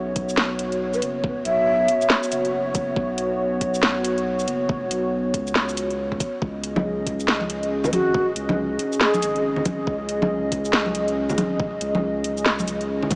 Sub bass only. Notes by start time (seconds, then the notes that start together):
Already playing: B1
0.37 B1
1.02 F#1
1.45 B1
2.32 F#1
2.96 B1
3.83 B1
4.48 F#1
4.91 B1
5.34 C#2
6.42 C#2
7.28 C#2
7.93 G#1
8.36 C#2
9.22 G#1
9.87 C#2
10.74 C#2
11.38 G#1
11.81 C#2
12.25 C#2
13.11 C#2